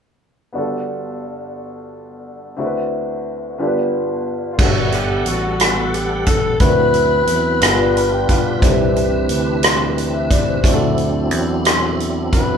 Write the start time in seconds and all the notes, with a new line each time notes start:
0.53 G1 G2 B3 D4 F#4 G4
0.58 A4
2.57 D2 D3 C4 D4 E4 F#4 A4
2.65 B4
3.58 G1 G2 B3 D4 F4 G4 A4
3.67 B4
4.52 F4
4.57 G1 G2 G3 A3 B3 D4 F#4 G#4 F#5, kick, crash
4.61 G3 B3 A4
4.66 A4
4.92 G4, cross-stick, closed hi-hat
5.25 A1 F#4, closed hi-hat
5.60 cross-stick, closed hi-hat
5.94 G4, closed hi-hat
6.26 A4, kick, closed hi-hat
6.60 D2 D3 F#3 C4 D4 E4 F#4 A#4 B4, kick, closed hi-hat
6.69 B4
6.94 closed hi-hat
7.27 E2, closed hi-hat
7.60 G1 G2 G3 B3 D4 F4 G4 A#4, cross-stick, closed hi-hat
7.67 B4
7.96 B5, closed hi-hat
8.13 G5
8.29 F5, kick, closed hi-hat
8.59 C2 C3 E3 C4 D4 E4 G4 B4, kick, closed hi-hat
8.65 A4
8.71 B4
8.96 closed hi-hat
9.29 D2, closed hi-hat
9.63 cross-stick, closed hi-hat
9.98 closed hi-hat
10.13 E5
10.30 D5, kick, closed hi-hat
10.47 C5
10.61 D2 D3 F#3 C4 D4 E4, kick, closed hi-hat
10.65 F#4 G4
10.73 A4
10.98 closed hi-hat
11.31 E2, closed hi-hat
11.65 cross-stick, closed hi-hat
12.00 closed hi-hat
12.32 B4, kick, closed hi-hat